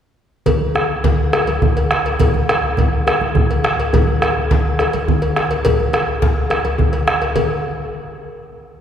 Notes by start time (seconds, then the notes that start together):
0.46 bombo low, cowbell, high conga, low conga, djembe bass
0.61 high conga
0.75 bombo rim, djembe tone
1.04 bombo low, cowbell, djembe slap, high conga, low conga
1.19 bombo rim
1.33 bombo rim, cowbell, djembe bass
1.47 cowbell, high conga
1.62 bombo low, djembe tone, high conga, low conga
1.77 cowbell, high conga
1.91 bombo rim, djembe slap
2.06 cowbell, high conga
2.20 bombo low, cowbell, high conga, low conga, djembe bass
2.34 high conga
2.49 bombo rim, cowbell, djembe tone
2.77 bombo low, cowbell, high conga, low conga
2.93 bombo rim
3.07 bombo rim, cowbell, djembe bass
3.21 high conga
3.35 bombo low, high conga, djembe tone, low conga
3.50 cowbell, high conga
3.64 bombo rim, djembe slap
3.79 cowbell, high conga
3.93 bombo low, cowbell, high conga, djembe bass, low conga
4.08 high conga
4.22 bombo rim, cowbell, djembe tone
4.51 bombo low, cowbell, djembe slap, high conga, low conga
4.65 bombo rim
4.79 bombo rim, cowbell, djembe bass
4.93 cowbell, high conga
5.08 bombo low, djembe tone, high conga, low conga
5.22 cowbell, high conga
5.36 bombo rim, djembe slap
5.51 cowbell, high conga
5.65 bombo low, cowbell, djembe bass, low conga
5.80 high conga
5.93 bombo rim, cowbell, djembe tone, high conga
6.22 bombo low, djembe slap, low conga
6.36 djembe slap, high conga
6.50 bombo rim, cowbell, djembe slap, djembe bass
6.65 cowbell, high conga
6.78 bombo low, djembe tone, high conga, low conga
6.93 bombo rim, cowbell
7.07 bombo rim, djembe slap, high conga
7.21 cowbell, djembe slap, high conga
7.36 bombo low, cowbell, low conga, djembe bass